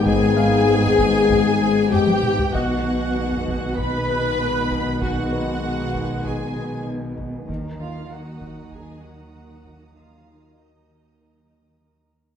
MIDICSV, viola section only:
0, 0, Header, 1, 2, 480
1, 0, Start_track
1, 0, Tempo, 618557
1, 46, Time_signature, 4, 2, 24, 8
1, 9592, End_track
2, 0, Start_track
2, 0, Title_t, "Viola section"
2, 0, Program_c, 0, 48
2, 48, Note_on_c, 0, 68, 106
2, 1458, Note_off_c, 0, 68, 0
2, 1488, Note_on_c, 0, 67, 106
2, 1967, Note_off_c, 0, 67, 0
2, 1969, Note_on_c, 0, 66, 80
2, 2924, Note_on_c, 0, 71, 113
2, 2928, Note_off_c, 0, 66, 0
2, 3866, Note_off_c, 0, 71, 0
2, 3887, Note_on_c, 0, 66, 85
2, 4827, Note_off_c, 0, 66, 0
2, 4848, Note_on_c, 0, 68, 85
2, 5327, Note_off_c, 0, 68, 0
2, 6046, Note_on_c, 0, 65, 64
2, 6269, Note_off_c, 0, 65, 0
2, 6296, Note_on_c, 0, 66, 60
2, 6771, Note_off_c, 0, 66, 0
2, 6776, Note_on_c, 0, 68, 62
2, 7009, Note_on_c, 0, 66, 59
2, 7011, Note_off_c, 0, 68, 0
2, 7727, Note_off_c, 0, 66, 0
2, 7727, Note_on_c, 0, 65, 47
2, 8197, Note_off_c, 0, 65, 0
2, 8211, Note_on_c, 0, 63, 39
2, 9409, Note_off_c, 0, 63, 0
2, 9592, End_track
0, 0, End_of_file